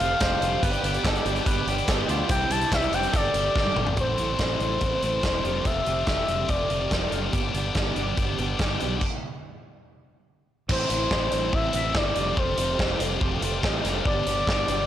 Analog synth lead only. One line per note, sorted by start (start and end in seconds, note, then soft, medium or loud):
0.00 0.61 F5 loud
2.31 2.51 G5 loud
2.51 2.71 A5 loud
2.73 2.93 E5 medium
2.94 3.14 G5 medium
3.15 3.96 D5 loud
4.00 5.67 C5 medium
5.65 6.06 E5 loud
6.06 6.51 E5 loud
6.49 7.12 D5 medium
10.72 11.56 C5 loud
11.54 11.75 E5 loud
11.75 11.98 E5 medium
11.97 12.40 D5 medium
12.38 13.01 C5 medium
14.06 14.87 D5 loud